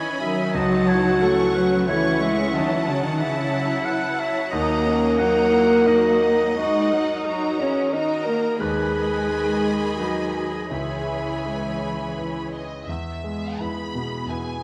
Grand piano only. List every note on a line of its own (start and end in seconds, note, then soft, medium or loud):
0.00 0.51 C#4 soft
0.54 2.50 C#2 medium
1.22 2.28 A3 soft
1.88 4.48 E4 soft
1.88 4.48 C#5 soft
4.53 6.54 D#2 medium
5.19 6.29 F#3 soft
5.86 8.57 D#4 soft
5.86 8.57 A#4 soft
8.61 10.67 D#2 soft
9.28 10.41 G#3 soft
10.00 10.67 D#4 soft
10.00 10.67 B4 soft
10.71 12.85 C#2 soft
11.46 12.61 G#3 soft
12.18 12.85 E4 soft
12.18 12.85 B4 soft
12.89 14.63 E2 soft
13.24 13.81 G#3 soft
13.60 13.92 E4 soft
13.60 13.92 B4 soft
13.95 14.50 B2 soft
14.30 14.60 E4 soft
14.30 14.60 B4 soft